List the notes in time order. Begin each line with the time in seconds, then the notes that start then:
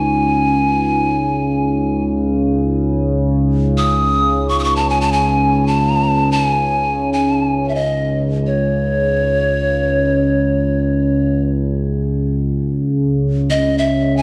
Already playing: C#2 C#3 D#4 G#5
3.78 D#6
4.49 C#6
4.59 D#6
4.64 C#6
4.76 A5
4.90 G#5
5.01 A5
5.12 G#5
5.67 A5
6.32 G#5
7.13 G#5
7.69 E5
7.75 D#5
8.46 C#5
12.51 C#2 C#3
13.50 C#4 D#5
13.78 E5
14.17 G#5